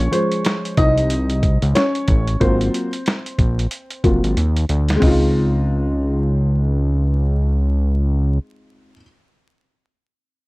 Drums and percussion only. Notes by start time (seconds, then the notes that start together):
0.00 closed hi-hat
0.13 closed hi-hat
0.32 closed hi-hat
0.45 snare, closed hi-hat
0.65 closed hi-hat
0.77 kick, closed hi-hat
0.97 closed hi-hat
1.10 closed hi-hat
1.30 closed hi-hat
1.43 kick, closed hi-hat
1.62 closed hi-hat
1.75 snare, closed hi-hat
1.95 closed hi-hat
2.08 kick, closed hi-hat
2.28 closed hi-hat
2.41 kick, closed hi-hat
2.61 closed hi-hat
2.74 closed hi-hat
2.93 closed hi-hat
3.06 snare, closed hi-hat
3.26 closed hi-hat
3.39 kick, closed hi-hat
3.59 closed hi-hat
3.71 closed hi-hat
3.91 closed hi-hat
4.04 kick, closed hi-hat
4.24 closed hi-hat
4.37 closed hi-hat
4.56 closed hi-hat
4.69 closed hi-hat
4.88 snare, closed hi-hat
5.02 kick, floor tom, open hi-hat